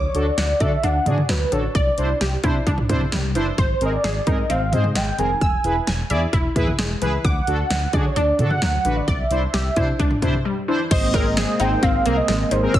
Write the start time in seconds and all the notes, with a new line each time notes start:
Already playing: C#5
0.15 D2 D4 F#4 A4, closed hi-hat
0.26 D5
0.38 D2 F#5, snare, closed hi-hat
0.60 D3 D4 F#4 A4 D5 E5, kick, closed hi-hat
0.83 D2 D4 F#5, closed hi-hat
1.06 D3 D4 F#4 G#4 D5, closed hi-hat, mid tom
1.18 mid tom
1.29 D2 F#3 B4, snare, closed hi-hat
1.52 A1 D3 D4 F#4 A4 C#5, closed hi-hat
1.75 C2 D5, kick, closed hi-hat
1.98 C2 D4 E4 C5, closed hi-hat
2.21 C2 G4, snare, closed hi-hat
2.44 C3 D4 E4 C5, kick, closed hi-hat
2.67 C2 D4, kick, closed hi-hat
2.78 mid tom
2.89 C3 D4 E4 C5, kick, closed hi-hat, mid tom
3.01 mid tom
3.12 C2 G3, snare, closed hi-hat
3.35 F#1 E3 D4 E4 C5, closed hi-hat
3.58 G#1 C5, kick, closed hi-hat
3.81 G#1 C4 G#4 A#4, closed hi-hat
3.86 D#5
3.93 D5
4.04 G#1 G#4, snare, closed hi-hat
4.27 G#2 C4 D#4 G#4 A#4 D#5, kick, closed hi-hat
4.50 G#1 C4 F5, closed hi-hat
4.73 G#2 C4 G#4 C5 D#5, closed hi-hat, mid tom
4.84 mid tom
4.95 G#1 G#3 G5, snare, closed hi-hat
5.18 F1 D#3 C4 G#4 A#4 G#5, closed hi-hat
5.41 E1 G#5 E6, kick, closed hi-hat
5.64 E1 E4 G#4 B4, closed hi-hat
5.87 E1 G#5, snare, closed hi-hat
6.10 E2 E4 G#4 D5 E5, closed hi-hat
6.33 E1 E4, kick, closed hi-hat
6.56 E2 E4 G#4 B4, kick, closed hi-hat, mid tom
6.67 mid tom
6.79 E1 G#3, snare, closed hi-hat
7.02 C#2 E3 E4 G#4 B4, closed hi-hat
7.25 D2 F#5 D6, kick, closed hi-hat
7.47 D2 D4 F#4 A4, closed hi-hat
7.70 D2 F#5, snare, closed hi-hat
7.93 D3 D4 F#4 G#4 D5, kick, closed hi-hat
8.05 C#5
8.16 D2 D4 D5, closed hi-hat
8.39 D3 D4 F#4 A4, closed hi-hat, mid tom
8.51 F#5, mid tom
8.62 D2 F#3, snare, closed hi-hat
8.85 A1 D3 D4 F#4 B4, closed hi-hat
8.96 D5
9.08 C2 D5 E5, kick, closed hi-hat
9.31 C2 D4 E4 C5, closed hi-hat
9.54 C2 G4, snare, closed hi-hat
9.76 C3 D4 E4 C5, kick, closed hi-hat
9.99 C2 D4, kick, closed hi-hat
10.11 mid tom
10.22 C3 D4 E4 C5, kick, closed hi-hat, mid tom
10.34 mid tom
10.45 G3
10.68 E3 D4 E4 C5
10.91 G#1 G#3 A#3 C4 C5 D#5, kick, closed hi-hat, crash
11.14 C4 G#4 A#4, kick, closed hi-hat, cowbell
11.25 D#5
11.37 G#4, snare, closed hi-hat
11.60 G#1 C4 D#4 G#4 C5 G5, closed hi-hat
11.83 G#1 C4 F5, kick, closed hi-hat
12.05 C2 A#3 C4 G#4 A#4, closed hi-hat
12.17 D#5
12.28 G#1 G#3, snare, closed hi-hat
12.51 G#1 D#3 G#4 A#4 C5, closed hi-hat
12.63 C4 G#4 A#4
12.74 E1 E3 B3 G#4 C#5 E6, kick, closed hi-hat